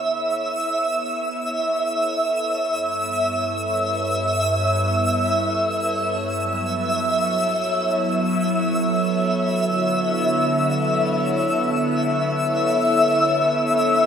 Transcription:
Already playing: ambient pad B3 E4 A4 C#5, synth texture E5
2.67 ambient pad G2
2.78 ambient pad B3
6.10 ambient pad F#3
6.96 ambient pad A4
7.04 ambient pad E4
9.56 ambient pad D3, synth texture E5

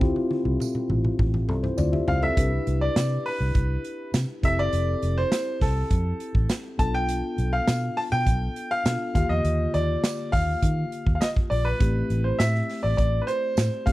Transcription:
0.00 fingered electric bass D2, tine electric piano C4 E4 F4 G4, kick, high tom
0.16 high tom
0.31 high tom
0.45 fingered electric bass C2, high tom
0.60 mid tom, tambourine
0.75 mid tom
0.90 fingered electric bass A1, mid tom
1.04 mid tom
1.19 fingered electric bass A1, kick, mid tom
1.34 mid tom
1.48 fingered electric bass C2, tine electric piano C4 A4, mid tom
1.63 tine electric piano E4 C5, mid tom
1.77 fingered electric bass D2, tine electric piano F4 D5, floor tom, tambourine
1.93 tine electric piano G4 E5, floor tom
2.07 fingered electric bass C#2, tine electric piano E4 C5, grand piano F5, floor tom
2.22 tine electric piano C4 A4, grand piano E5, floor tom
2.36 fingered electric bass C2, tine electric piano D4 E4 G4 B4, kick, closed hi-hat
2.67 fingered electric bass C2, closed hi-hat
2.81 grand piano D5
2.96 fingered electric bass C3, snare, closed hi-hat, tambourine
3.26 grand piano B4, open hi-hat
3.40 fingered electric bass C2
3.55 fingered electric bass C2, kick, closed hi-hat
3.85 closed hi-hat
4.14 fingered electric bass C3, snare, closed hi-hat, tambourine
4.43 fingered electric bass F1, tine electric piano C4 E4 G4 A4, grand piano E5, kick, closed hi-hat
4.58 fingered electric bass F#1, grand piano D5
4.73 fingered electric bass F1, closed hi-hat
5.02 fingered electric bass F1, closed hi-hat
5.18 grand piano C5
5.32 snare, closed hi-hat, tambourine
5.61 fingered electric bass C2, grand piano A4, kick, snare, open hi-hat
5.90 fingered electric bass F2, kick, closed hi-hat
6.20 closed hi-hat
6.35 fingered electric bass A1, kick
6.49 snare, closed hi-hat, tambourine
6.78 fingered electric bass B1, tine electric piano B3 D4 F4 A4, grand piano A5, kick, closed hi-hat
6.95 grand piano G5
7.09 closed hi-hat
7.38 fingered electric bass B1, closed hi-hat
7.53 grand piano F5
7.68 fingered electric bass B2, snare, closed hi-hat, tambourine
7.97 grand piano A5, open hi-hat
8.12 fingered electric bass B2, grand piano G5
8.27 fingered electric bass B1, kick, closed hi-hat
8.56 closed hi-hat
8.71 grand piano F5
8.85 fingered electric bass B2, tine electric piano B3 D4 F4 A4, snare, closed hi-hat, tambourine
9.14 fingered electric bass D#2, tine electric piano D3 A#3 F4 G4, grand piano F5, kick, closed hi-hat
9.29 fingered electric bass E2, grand piano D#5
9.44 fingered electric bass D#2, closed hi-hat
9.74 fingered electric bass D#2, grand piano D5, closed hi-hat
10.04 snare, closed hi-hat, tambourine
10.32 fingered electric bass D#2, grand piano F5, kick, open hi-hat
10.62 fingered electric bass D#3, kick, closed hi-hat
10.92 closed hi-hat
11.06 fingered electric bass D#2, kick
11.15 grand piano F5
11.21 grand piano D#5, snare, closed hi-hat, tambourine
11.36 kick
11.50 fingered electric bass A#1, grand piano D5, open hi-hat
11.65 grand piano B4
11.79 fingered electric bass A1, tine electric piano A3 C4 E4 G4, kick, closed hi-hat
12.10 fingered electric bass A1, closed hi-hat
12.24 grand piano C5
12.39 fingered electric bass A2, grand piano E5, snare, closed hi-hat, tambourine
12.55 snare
12.69 snare, open hi-hat
12.83 fingered electric bass A1, grand piano D5
12.97 fingered electric bass A1, grand piano D5, kick, closed hi-hat
13.22 grand piano B4
13.27 grand piano C5, closed hi-hat
13.57 fingered electric bass A2, snare, closed hi-hat, tambourine
13.86 fingered electric bass F1, tine electric piano A3 C4 E4 G4, grand piano F5, kick, closed hi-hat

